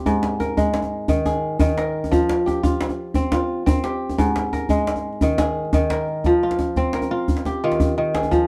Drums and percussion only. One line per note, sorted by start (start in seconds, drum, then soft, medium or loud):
0.06 djembe bass medium
0.23 djembe slap medium
0.40 djembe tone medium
0.57 djembe bass medium
0.74 djembe slap medium
0.82 djembe tone soft
1.08 djembe bass medium
1.26 djembe tone medium
1.59 djembe tone medium
1.59 djembe bass medium
1.78 djembe slap medium
2.04 djembe tone medium
2.12 djembe bass medium
2.29 djembe slap medium
2.48 djembe tone medium
2.64 djembe bass medium
2.81 djembe slap medium
2.89 djembe tone soft
3.14 djembe bass medium
3.32 djembe slap medium
3.32 djembe tone medium
3.67 djembe tone medium
3.67 djembe bass medium
3.84 djembe slap medium
4.10 djembe tone medium
4.19 djembe bass medium
4.36 djembe slap medium
4.45 djembe slap soft
4.53 djembe tone medium
4.69 djembe bass medium
4.87 djembe slap medium
4.96 djembe tone medium
5.13 djembe slap soft
5.21 djembe bass medium
5.38 djembe slap medium
5.38 djembe tone medium
5.65 djembe slap soft
5.73 djembe slap soft
5.73 djembe tone medium
5.73 djembe bass medium
5.82 djembe slap soft
5.90 djembe slap medium
6.08 djembe slap soft
6.24 djembe slap soft
6.24 djembe bass medium
6.51 djembe slap medium
6.59 djembe tone medium
6.76 djembe slap soft
6.76 djembe bass medium
6.93 djembe slap medium
7.02 djembe tone soft
7.28 djembe bass medium
7.37 djembe slap medium
7.45 djembe tone medium
7.72 djembe slap soft
7.80 djembe tone medium
7.80 djembe bass medium
8.05 djembe slap soft
8.15 djembe slap medium
8.23 djembe tone medium
8.32 djembe slap soft
8.32 djembe bass medium